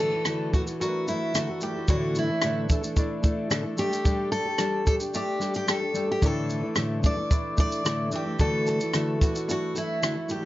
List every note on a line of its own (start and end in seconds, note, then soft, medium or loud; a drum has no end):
0.00 0.13 D3 medium
0.00 1.88 E3 medium
0.00 0.13 A3 medium
0.00 0.53 A3 medium
0.00 1.08 A3 soft
0.00 0.26 D4 medium
0.00 0.13 E4 medium
0.00 0.53 E4 medium
0.00 0.12 F#4 medium
0.00 0.54 F#4 medium
0.00 0.10 A4 medium
0.00 0.50 A4 medium
0.00 0.54 D5 medium
0.12 0.25 E4 soft
0.12 0.26 F#4 soft
0.12 0.26 A4 soft
0.25 0.53 D3 medium
0.25 0.52 A3 medium
0.25 0.81 D4 medium
0.25 0.53 E4 medium
0.25 0.54 F#4 medium
0.25 0.54 A4 medium
0.25 cross-stick medium
0.25 shaker medium
0.53 0.66 A3 soft
0.53 0.67 E4 medium
0.53 1.94 F#4 medium
0.53 0.61 F#4 medium
0.53 0.67 F#4 medium
0.53 0.65 A4 medium
0.53 kick medium
0.53 shaker soft
0.66 1.07 E4 soft
0.66 1.08 F#4 soft
0.66 1.07 A4 medium
0.66 shaker soft
0.80 1.62 A3 medium
0.80 1.35 D4 medium
0.80 1.62 E4 medium
0.80 1.62 F#4 medium
0.80 1.06 F#4 medium
0.80 0.87 A#4 medium
0.80 shaker medium
0.88 1.66 B4 medium
1.07 1.34 A3 medium
1.07 1.63 A3 soft
1.07 1.34 E4 medium
1.07 1.35 E4 medium
1.07 1.34 F#4 medium
1.07 1.35 A4 medium
1.07 shaker soft
1.34 1.48 D3 medium
1.34 1.48 A3 medium
1.34 2.44 D4 soft
1.34 1.48 E4 medium
1.34 1.48 F#4 medium
1.34 1.62 F#4 medium
1.34 1.48 A4 medium
1.34 cross-stick medium
1.34 shaker medium
1.49 1.62 E4 soft
1.49 1.62 F#4 soft
1.49 1.62 A4 soft
1.61 1.75 A3 medium
1.61 2.16 A3 medium
1.61 1.76 E4 soft
1.61 1.75 F#4 medium
1.61 1.89 G4 medium
1.61 1.74 A4 medium
1.61 shaker soft
1.76 1.89 E4 soft
1.76 1.89 F#4 soft
1.76 1.89 A4 soft
1.88 2.29 A2 medium
1.88 2.29 D3 medium
1.88 3.84 E3 medium
1.88 2.70 A3 medium
1.88 2.29 A3 medium
1.88 2.70 D4 medium
1.88 2.29 D4 medium
1.88 2.71 E4 medium
1.88 2.29 E4 medium
1.88 2.17 F#4 medium
1.88 2.28 A4 medium
1.88 1.96 C#5 medium
1.88 kick medium
1.88 shaker medium
1.97 2.74 D5 medium
2.15 3.24 A3 soft
2.15 2.68 E4 medium
2.15 shaker soft
2.29 2.42 A3 soft
2.29 2.43 D4 soft
2.29 2.43 E4 soft
2.29 2.43 A4 soft
2.42 2.70 A2 medium
2.42 2.70 D3 medium
2.42 2.68 A3 medium
2.42 2.69 D4 medium
2.42 2.98 D4 medium
2.42 2.69 E4 medium
2.42 2.71 A4 medium
2.42 cross-stick medium
2.42 shaker medium
2.69 2.83 A3 medium
2.69 2.82 D4 medium
2.69 2.81 E4 medium
2.69 4.87 A4 medium
2.69 2.80 A4 medium
2.69 kick medium
2.69 shaker soft
2.81 3.21 A3 soft
2.81 3.22 D4 soft
2.81 3.23 E4 soft
2.81 3.23 A4 medium
2.81 shaker soft
2.96 3.76 A3 medium
2.96 3.77 D4 medium
2.96 3.52 D4 medium
2.96 3.79 E4 medium
2.96 3.79 D5 medium
2.96 kick medium
2.96 shaker medium
3.22 3.49 A3 medium
3.22 3.78 A3 soft
3.22 3.50 D4 medium
3.22 3.50 E4 medium
3.22 3.51 A4 medium
3.22 kick medium
3.22 shaker soft
3.50 3.64 A2 medium
3.50 3.64 D3 medium
3.50 3.64 A3 medium
3.50 3.64 D4 medium
3.50 4.60 D4 medium
3.50 3.63 E4 medium
3.50 3.62 A4 medium
3.50 cross-stick loud
3.50 shaker medium
3.63 3.76 A3 soft
3.63 3.77 D4 soft
3.63 3.78 E4 soft
3.63 3.77 A4 medium
3.77 3.91 G3 soft
3.77 4.65 A3 medium
3.77 4.06 A3 medium
3.77 3.92 D4 medium
3.77 4.65 D4 medium
3.77 3.91 G4 medium
3.77 4.31 G4 medium
3.77 4.66 G4 medium
3.77 3.89 A4 medium
3.77 4.66 D5 medium
3.77 shaker medium
3.90 4.04 D4 soft
3.90 4.04 G4 soft
3.90 4.05 A4 soft
3.90 shaker medium
4.04 4.46 G3 medium
4.04 4.32 A3 medium
4.04 4.46 D4 medium
4.04 4.46 G4 medium
4.04 4.44 A4 medium
4.04 kick medium
4.04 shaker medium
4.32 5.41 A3 medium
4.32 4.86 A4 loud
4.32 shaker soft
4.45 4.58 D4 soft
4.45 4.59 G4 medium
4.45 4.59 A4 medium
4.58 4.84 G3 medium
4.58 4.85 D4 medium
4.58 5.13 D4 medium
4.58 4.86 G4 medium
4.58 4.87 A4 medium
4.58 cross-stick medium
4.58 shaker medium
4.85 5.00 G3 medium
4.85 5.00 D4 medium
4.85 6.28 G4 medium
4.85 5.00 G4 medium
4.85 4.94 A4 medium
4.85 4.98 A4 medium
4.85 kick medium
4.85 shaker medium
5.00 5.39 D4 soft
5.00 5.40 G4 soft
5.00 5.41 A4 soft
5.00 shaker soft
5.14 5.96 A3 medium
5.14 5.68 D4 medium
5.14 5.96 D4 medium
5.14 5.96 G4 medium
5.14 5.53 G4 medium
5.14 5.97 D5 medium
5.14 shaker medium
5.40 5.66 G3 medium
5.40 5.95 A3 soft
5.40 5.67 D4 medium
5.40 5.67 G4 medium
5.40 5.68 A4 medium
5.40 cross-stick soft
5.40 shaker soft
5.54 5.69 G4 medium
5.54 shaker soft
5.67 5.81 G3 medium
5.67 5.82 D4 medium
5.67 6.53 D4 soft
5.67 5.81 G4 medium
5.67 5.79 A4 medium
5.67 6.11 A4 medium
5.67 cross-stick loud
5.67 shaker medium
5.80 5.93 D4 soft
5.80 5.94 G4 soft
5.80 5.95 A4 soft
5.94 6.08 G3 medium
5.94 6.77 A3 medium
5.94 6.08 D4 medium
5.94 6.07 G4 medium
5.94 6.06 A4 medium
5.94 shaker medium
6.07 6.21 D4 soft
6.07 6.22 G4 soft
6.07 6.22 A4 soft
6.12 6.26 G4 medium
6.21 6.62 A2 medium
6.21 6.63 D3 medium
6.21 6.50 E3 medium
6.21 6.63 A3 medium
6.21 7.04 A3 medium
6.21 6.62 D4 medium
6.21 7.04 D4 medium
6.21 6.61 E4 medium
6.21 7.04 E4 medium
6.21 6.60 A4 medium
6.21 7.05 D5 medium
6.21 kick medium
6.21 shaker medium
6.26 6.78 A4 medium
6.50 7.57 E3 medium
6.50 shaker soft
6.61 6.75 A3 soft
6.61 6.76 D4 soft
6.61 6.76 E4 soft
6.61 6.76 A4 soft
6.76 7.03 A2 medium
6.76 7.04 D3 medium
6.76 7.01 A3 medium
6.76 7.30 A3 medium
6.76 7.02 D4 medium
6.76 7.03 E4 medium
6.76 7.04 A4 medium
6.76 cross-stick medium
6.76 shaker medium
7.02 7.16 A3 medium
7.02 7.17 D4 medium
7.02 8.94 D4 medium
7.02 7.16 E4 medium
7.02 7.15 A4 medium
7.02 kick medium
7.02 shaker soft
7.06 7.59 D5 loud
7.16 7.55 A3 soft
7.16 7.56 D4 soft
7.16 7.57 E4 soft
7.16 7.57 A4 soft
7.31 8.12 A3 medium
7.31 7.85 A3 medium
7.31 8.13 D4 medium
7.31 8.13 E4 medium
7.31 8.13 D5 medium
7.31 kick medium
7.31 shaker medium
7.56 8.12 E3 soft
7.56 7.84 A3 medium
7.56 7.84 D4 medium
7.56 7.84 E4 soft
7.56 7.85 A4 soft
7.56 8.09 D5 loud
7.56 kick medium
7.56 shaker soft
7.72 shaker soft
7.84 8.12 A2 medium
7.84 8.12 D3 medium
7.84 8.10 A3 medium
7.84 8.67 A3 soft
7.84 8.11 D4 medium
7.84 8.11 E4 medium
7.84 8.12 A4 medium
7.84 cross-stick loud
7.84 shaker medium
8.11 8.39 E3 medium
8.11 8.25 A3 soft
8.11 8.26 D4 medium
8.11 8.25 E4 medium
8.11 8.24 A4 medium
8.11 shaker soft
8.15 8.40 G4 medium
8.25 8.38 A3 soft
8.25 8.40 D4 soft
8.25 8.39 E4 soft
8.25 8.39 A4 soft
8.39 8.80 D3 medium
8.39 10.45 E3 medium
8.39 9.21 A3 medium
8.39 8.80 A3 medium
8.39 9.21 E4 medium
8.39 8.80 E4 medium
8.39 9.21 F#4 medium
8.39 8.80 F#4 medium
8.39 8.67 A4 medium
8.39 8.79 A4 medium
8.39 9.22 D5 medium
8.39 kick medium
8.39 shaker medium
8.67 9.75 A3 soft
8.67 9.18 A4 medium
8.67 shaker soft
8.80 8.94 E4 soft
8.80 8.94 F#4 soft
8.80 8.94 A4 soft
8.80 shaker soft
8.94 9.21 D3 medium
8.94 9.19 A3 medium
8.94 9.48 D4 medium
8.94 9.20 E4 medium
8.94 9.21 F#4 medium
8.94 9.22 A4 medium
8.94 cross-stick medium
8.94 shaker medium
9.20 9.34 A3 soft
9.20 9.35 E4 medium
9.20 10.45 F#4 medium
9.20 9.34 F#4 medium
9.20 9.47 F#4 medium
9.20 9.32 A4 medium
9.20 kick medium
9.20 shaker soft
9.33 9.74 E4 soft
9.33 9.75 F#4 soft
9.33 9.74 A4 soft
9.33 shaker soft
9.48 10.29 A3 medium
9.48 10.02 D4 medium
9.48 10.29 E4 medium
9.48 10.30 F#4 medium
9.48 9.75 F#4 medium
9.48 10.30 A4 medium
9.48 shaker medium
9.75 10.02 A3 medium
9.75 10.29 A3 medium
9.75 10.02 E4 soft
9.75 10.32 E4 medium
9.75 10.03 F#4 medium
9.75 10.03 A4 medium
9.75 shaker soft
10.02 10.15 D3 medium
10.02 10.16 A3 medium
10.02 10.45 D4 soft
10.02 10.16 E4 medium
10.02 10.16 F#4 medium
10.02 10.14 A4 medium
10.02 cross-stick loud
10.02 shaker medium
10.15 10.28 E4 soft
10.15 10.29 F#4 soft
10.15 10.29 A4 soft
10.28 10.42 A3 soft
10.28 10.45 A3 medium
10.28 10.42 E4 medium
10.28 10.41 F#4 medium
10.28 10.45 G4 medium
10.28 10.40 A4 medium
10.28 shaker medium
10.41 10.45 A4 soft